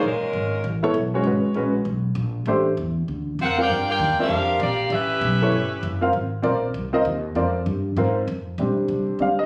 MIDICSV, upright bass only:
0, 0, Header, 1, 3, 480
1, 0, Start_track
1, 0, Tempo, 305188
1, 35, Time_signature, 4, 2, 24, 8
1, 14877, End_track
2, 0, Start_track
2, 0, Title_t, "Upright bass"
2, 0, Program_c, 0, 32
2, 44, Note_on_c, 0, 34, 83
2, 318, Note_off_c, 0, 34, 0
2, 524, Note_on_c, 0, 32, 86
2, 984, Note_off_c, 0, 32, 0
2, 1005, Note_on_c, 0, 33, 85
2, 1464, Note_off_c, 0, 33, 0
2, 1479, Note_on_c, 0, 35, 97
2, 1935, Note_off_c, 0, 35, 0
2, 1944, Note_on_c, 0, 32, 84
2, 2227, Note_off_c, 0, 32, 0
2, 2428, Note_on_c, 0, 34, 83
2, 2895, Note_off_c, 0, 34, 0
2, 2911, Note_on_c, 0, 35, 88
2, 3376, Note_off_c, 0, 35, 0
2, 3383, Note_on_c, 0, 34, 98
2, 3853, Note_off_c, 0, 34, 0
2, 3863, Note_on_c, 0, 33, 87
2, 4332, Note_off_c, 0, 33, 0
2, 4360, Note_on_c, 0, 40, 89
2, 4821, Note_off_c, 0, 40, 0
2, 4847, Note_on_c, 0, 38, 78
2, 5305, Note_off_c, 0, 38, 0
2, 5332, Note_on_c, 0, 41, 87
2, 5788, Note_off_c, 0, 41, 0
2, 5799, Note_on_c, 0, 43, 80
2, 6261, Note_off_c, 0, 43, 0
2, 6276, Note_on_c, 0, 39, 84
2, 6552, Note_off_c, 0, 39, 0
2, 6743, Note_on_c, 0, 41, 83
2, 7213, Note_off_c, 0, 41, 0
2, 7230, Note_on_c, 0, 34, 90
2, 7696, Note_off_c, 0, 34, 0
2, 7709, Note_on_c, 0, 33, 90
2, 8176, Note_off_c, 0, 33, 0
2, 8197, Note_on_c, 0, 35, 86
2, 8660, Note_off_c, 0, 35, 0
2, 8678, Note_on_c, 0, 31, 83
2, 9141, Note_off_c, 0, 31, 0
2, 9165, Note_on_c, 0, 30, 96
2, 9625, Note_off_c, 0, 30, 0
2, 9642, Note_on_c, 0, 32, 85
2, 10103, Note_off_c, 0, 32, 0
2, 10120, Note_on_c, 0, 34, 88
2, 10582, Note_off_c, 0, 34, 0
2, 10605, Note_on_c, 0, 36, 89
2, 11064, Note_off_c, 0, 36, 0
2, 11088, Note_on_c, 0, 39, 95
2, 11546, Note_off_c, 0, 39, 0
2, 11564, Note_on_c, 0, 41, 87
2, 12025, Note_off_c, 0, 41, 0
2, 12048, Note_on_c, 0, 43, 90
2, 12507, Note_off_c, 0, 43, 0
2, 12528, Note_on_c, 0, 44, 86
2, 12987, Note_off_c, 0, 44, 0
2, 13016, Note_on_c, 0, 41, 93
2, 13472, Note_off_c, 0, 41, 0
2, 13496, Note_on_c, 0, 34, 84
2, 13765, Note_off_c, 0, 34, 0
2, 13973, Note_on_c, 0, 36, 82
2, 14244, Note_off_c, 0, 36, 0
2, 14452, Note_on_c, 0, 38, 79
2, 14877, Note_off_c, 0, 38, 0
2, 14877, End_track
3, 0, Start_track
3, 0, Title_t, "Muted upright bass strokes"
3, 351, Note_on_c, 9, 29, 37
3, 508, Note_off_c, 9, 29, 0
3, 2264, Note_on_c, 9, 29, 40
3, 2422, Note_off_c, 9, 29, 0
3, 6576, Note_on_c, 9, 29, 37
3, 6733, Note_off_c, 9, 29, 0
3, 13797, Note_on_c, 9, 29, 37
3, 13954, Note_off_c, 9, 29, 0
3, 14260, Note_on_c, 9, 29, 39
3, 14417, Note_off_c, 9, 29, 0
3, 14877, End_track
0, 0, End_of_file